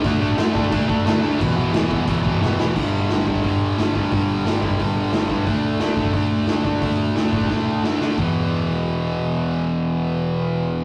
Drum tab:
CC |x---x---x---x---|x---x---x-------|x---------------|----------------|
HH |----------------|----------------|----o---o---o---|o---o---o---o---|
SD |----o-------o---|----o-------o-o-|----o-------o---|----o-------o---|
BD |o-----o-o-o-----|o-----o-o-o-----|o-----ooo-----o-|o-----ooo-----o-|

CC |----------------|----------------|x---------------|----------------|
HH |o---o---o---o---|o---o-----------|----------------|----------------|
SD |----o-------o---|----o---o---o-o-|----------------|----------------|
BD |o-----ooo-----o-|o-----ooo-------|o---------------|----------------|